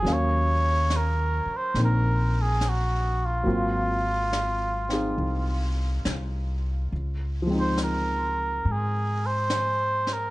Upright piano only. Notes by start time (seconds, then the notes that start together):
0.02 F#3 A#3 C#4
0.08 F5
1.75 A#3 C4 D#4
3.43 F#3 A#3 C4
3.48 F4
4.89 C4 D#4
4.93 G#4
7.42 F3
7.47 G#3 C4
7.54 D#4